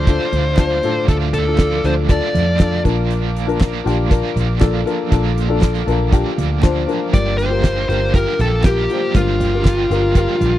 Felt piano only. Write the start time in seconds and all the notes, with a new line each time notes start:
Already playing: A2 D4 F4 A4 C5
0.07 D4 F4 A4
0.57 D4 F4 C5
0.82 A2 D4 F4 A4
1.07 D4 F4 A4
1.46 D4 F4 A4
1.84 D4 F4 A4
2.09 D4 F4 A4
2.59 D4 F4 A4
2.83 D4 F4 A#4
3.46 D4 F4 A#4
3.84 D4 F4 G4
4.09 D4 F4 A#4
4.60 D4 F4 A4
4.86 D4 F4 A#4
5.10 D4 F4 A4
5.49 D4 F4 A4
5.86 D4 F4 A#4
6.11 D4 F4 G4
6.62 D4 F4 C5
6.87 D4 F4 A#4
7.13 G2 D3 F4 G4
7.50 F4 G4 A#4
7.88 F4 G4 A#4
8.13 F4 G4 A#4
8.65 F4 G4 A#4
8.90 F4 G4 C5
9.15 G2 D3 F4 G4 A#4
9.53 F4 G4 A#4
9.90 F4 G4 A#4
10.15 F4 G4 A#4